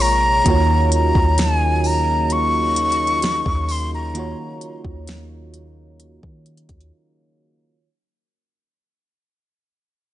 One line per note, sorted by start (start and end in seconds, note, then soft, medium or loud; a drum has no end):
0.00 0.42 A#1 loud
0.00 0.42 A#2 medium
0.00 0.46 A#2 medium
0.00 0.46 C3 medium
0.00 0.42 G#3 medium
0.00 0.42 A#3 medium
0.00 0.45 A#3 medium
0.00 0.42 F4 medium
0.00 0.47 G#4 medium
0.00 0.47 C#5 medium
0.00 0.93 A#5 loud
0.44 1.12 D#2 loud
0.44 7.80 C#3 medium
0.44 4.10 D#3 medium
0.44 7.80 F#3 medium
0.44 4.11 A#3 medium
0.44 7.80 A#3 medium
0.44 7.80 D#4 medium
0.44 4.12 F4 medium
0.44 kick loud
0.44 closed hi-hat medium
0.48 4.12 F#4 medium
0.48 4.13 C#5 medium
0.92 1.42 A#5 loud
0.92 closed hi-hat medium
1.15 3.42 D#2 loud
1.15 kick medium
1.38 1.88 G#5 loud
1.38 snare loud
1.38 closed hi-hat medium
1.84 2.34 A#5 medium
1.84 open hi-hat soft
2.30 3.73 C#6 loud
2.30 closed hi-hat medium
2.76 closed hi-hat medium
2.92 closed hi-hat medium
3.07 closed hi-hat soft
3.22 snare loud
3.22 closed hi-hat medium
3.46 4.34 D#2 loud
3.46 kick loud
3.69 3.93 C6 medium
3.69 open hi-hat medium
3.94 4.82 A#5 medium
4.14 7.80 D#3 medium
4.14 7.80 A#3 medium
4.14 7.81 F4 medium
4.14 closed hi-hat medium
4.18 7.82 F#4 medium
4.18 7.82 C#5 medium
4.61 closed hi-hat medium
4.85 6.19 D#2 loud
4.85 kick loud
5.08 snare loud
5.08 closed hi-hat medium
5.54 closed hi-hat medium
6.00 closed hi-hat medium
6.23 6.67 D#3 loud
6.23 kick loud
6.46 closed hi-hat medium
6.57 closed hi-hat medium
6.69 6.91 D#2 loud
6.69 kick medium
6.69 closed hi-hat medium
6.81 closed hi-hat medium